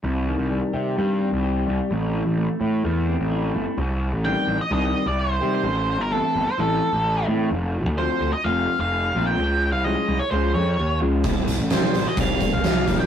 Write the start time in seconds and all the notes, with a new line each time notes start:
0.04 C2 C3
0.27 D#3
0.38 C2
0.50 G3
0.73 C3 G4
0.97 G2 G3
1.21 C4
1.33 C2
1.43 G4
1.66 C2 G3
1.90 A1 A2
2.15 E3
2.26 A1
2.38 A3
2.61 A2 E4
2.84 E2 A3
3.07 C4
3.20 A1
3.31 E4
3.55 G1 A3
3.78 C2
4.13 A1
4.24 D#3 G3 C4 G4 G5
4.47 A1
4.61 D#5
4.71 C2 D#3 G3 C4 G4 D#5
5.06 C2 D5
5.19 C5
5.41 C3 D#3 G3 C4 G4
5.55 C5
5.63 A1
5.99 G1 A#4
6.11 E3 A3 C4 E4 A4
6.35 G1
6.48 C5
6.58 A1 E3 A3 C4 E4 A4
6.93 A1
7.27 A2 E3 A3 C4 E4
7.51 F1
7.86 D2
7.98 F3 A3 C4 F4 C5
8.21 D2
8.33 D#5
8.44 F1 F3 A3 C4 F4 F5
8.79 F1 F5
9.15 A#1 F3 A3 C4 F4
9.27 G5
9.38 C#2
9.72 C2 F5
9.84 F3 G#3 C#4 F4 D#5
10.08 C2
10.19 C#5
10.31 C#2 F3 G#3 C#4 F4 C5
10.54 F2 C#5
10.79 D#2
11.01 C#2 F3 G#3 C#4 F4
11.24 C2, kick, closed hi-hat
11.48 closed hi-hat
11.59 A1
11.70 D#3 G3 C4 G4 C5, snare, closed hi-hat
11.94 A1, closed hi-hat
12.08 D#5
12.17 C2 D#3 G3 C4 G4 F5, kick, closed hi-hat
12.40 kick, closed hi-hat
12.53 C2 F5
12.64 snare, closed hi-hat
12.88 A#1 D#3 G3 C4 G4, kick, closed hi-hat
13.00 G5